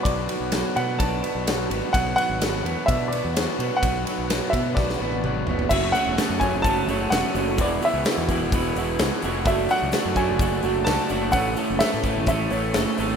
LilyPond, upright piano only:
\new Staff \with { instrumentName = "Upright piano" } { \time 4/4 \key b \dorian \tempo 4 = 128 d''4. fis''8 a''4. r8 | fis''8 fis''4. e''8 d''4. | fis''4. e''8 d''4. r8 | e''8 fis''4 gis''8 a''4 fis''4 |
d''8 e''4 r2 r8 | e''8 fis''4 gis''4 r8 a''4 | fis''4 e''4 e''8 cis''4 r8 | }